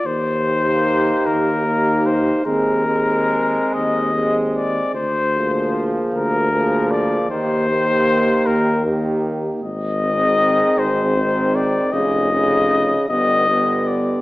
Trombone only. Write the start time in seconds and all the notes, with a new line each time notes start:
0.45 A#3
1.66 A#3
2.46 G#3
2.87 G#3
4.14 G#3
5.35 F3
6.52 F3
7.30 D#3
7.69 D#3
8.86 D#3
10.02 D#3
11.17 D#3
11.92 C#3
12.31 C#3
13.08 D3
13.48 D3